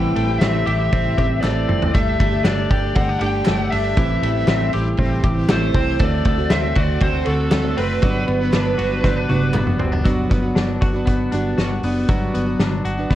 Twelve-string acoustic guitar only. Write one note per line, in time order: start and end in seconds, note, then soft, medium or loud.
0.00 0.29 A2 medium
0.00 0.29 E3 medium
0.00 0.29 G3 medium
0.00 0.28 C4 medium
0.00 0.26 G4 loud
0.28 0.66 G3 soft
0.28 0.66 C4 soft
0.28 0.67 G4 medium
0.66 0.89 E3 medium
0.66 0.90 G3 medium
0.66 0.91 C4 medium
0.66 0.91 G4 medium
0.91 1.15 E3 medium
0.91 1.16 G3 medium
0.91 1.17 C4 medium
0.91 1.17 G4 medium
1.16 1.40 E3 medium
1.16 1.42 G3 medium
1.16 1.42 C4 medium
1.16 1.43 G4 medium
1.42 1.93 E3 medium
1.42 1.93 G3 medium
1.42 1.94 C4 medium
1.42 1.94 G4 medium
1.94 2.32 G3 medium
1.94 2.32 A3 medium
1.94 2.32 D4 medium
1.94 2.30 G4 medium
2.32 2.70 A3 soft
2.32 2.70 D4 soft
2.32 2.70 G4 medium
2.70 2.94 G3 medium
2.70 2.95 A3 medium
2.70 2.96 D4 medium
2.70 2.97 G4 medium
2.96 3.19 G3 medium
2.96 3.21 A3 medium
2.96 3.21 D4 medium
2.96 3.22 G4 medium
3.20 3.44 G3 medium
3.20 3.46 A3 medium
3.20 3.46 D4 medium
3.20 3.47 G4 medium
3.46 3.97 G3 medium
3.46 3.97 A3 medium
3.46 3.98 D4 medium
3.46 3.98 G4 medium
3.97 4.35 A2 medium
3.97 4.35 E3 medium
3.97 4.35 G3 medium
3.97 4.34 C4 medium
3.97 4.33 G4 medium
4.34 4.72 G3 medium
4.34 4.73 C4 medium
4.34 4.73 G4 medium
4.72 4.97 E3 medium
4.72 4.98 G3 medium
4.72 4.99 C4 medium
4.72 4.99 G4 medium
4.98 5.22 E3 medium
4.98 5.23 G3 medium
4.98 5.24 C4 medium
4.98 5.24 G4 medium
5.23 5.48 E3 medium
5.23 5.49 G3 medium
5.23 5.50 C4 medium
5.23 5.50 G4 medium
5.49 6.00 E3 medium
5.49 6.00 G3 medium
5.49 6.01 C4 medium
6.00 6.38 D3 medium
6.00 6.38 A3 medium
6.00 6.38 C4 medium
6.00 6.37 F#4 medium
6.38 6.76 A3 soft
6.38 6.77 C4 medium
6.38 6.76 F#4 medium
6.76 7.00 D3 medium
6.76 7.01 A3 medium
6.76 7.02 C4 medium
6.76 7.03 F#4 medium
7.01 7.26 D3 medium
7.01 7.27 A3 medium
7.01 7.28 C4 medium
7.01 7.28 F#4 medium
7.27 7.51 D3 medium
7.27 7.52 A3 medium
7.27 7.53 C4 medium
7.27 7.54 F#4 medium
7.53 8.02 D3 medium
7.53 8.03 A3 medium
7.53 8.03 C4 medium
7.53 8.03 F#4 medium
8.02 8.41 G3 medium
8.02 8.41 B3 loud
8.02 8.41 D4 medium
8.02 8.39 F#4 medium
8.40 8.78 B3 medium
8.40 8.79 D4 medium
8.40 8.79 F#4 medium
8.78 9.01 G3 medium
8.78 9.02 B3 medium
8.78 9.03 D4 medium
8.78 9.04 F#4 medium
9.02 9.28 G3 medium
9.02 9.28 B3 medium
9.02 9.29 D4 medium
9.02 9.30 F#4 medium
9.29 9.52 G3 medium
9.29 9.53 B3 medium
9.29 9.54 D4 medium
9.29 9.54 F#4 medium
9.53 10.04 G3 medium
9.53 10.05 B3 medium
9.53 10.05 D4 medium
9.53 10.06 F#4 medium
10.05 10.43 G3 medium
10.05 10.43 B3 loud
10.05 10.43 D4 medium
10.05 10.41 F#4 loud
10.43 10.94 B3 soft
10.43 10.94 D4 medium
10.43 10.93 F#4 medium
10.93 11.32 B3 medium
10.93 11.32 D4 medium
10.93 11.32 F#4 medium
11.32 11.56 G3 medium
11.32 11.57 B3 medium
11.32 11.58 D4 medium
11.32 11.59 F#4 medium
11.58 11.82 G3 medium
11.58 11.82 B3 medium
11.58 11.83 D4 medium
11.58 11.84 F#4 medium
11.83 12.07 G3 medium
11.83 12.08 B3 medium
11.83 12.07 D4 medium
11.83 12.09 F#4 medium
12.08 12.46 G3 medium
12.08 12.47 B3 medium
12.08 12.46 D4 loud
12.08 12.45 F#4 medium
12.46 12.98 B3 soft
12.46 12.98 D4 soft
12.46 12.97 F#4 medium
12.97 13.15 B3 soft
12.97 13.15 D4 soft
12.97 13.15 F#4 medium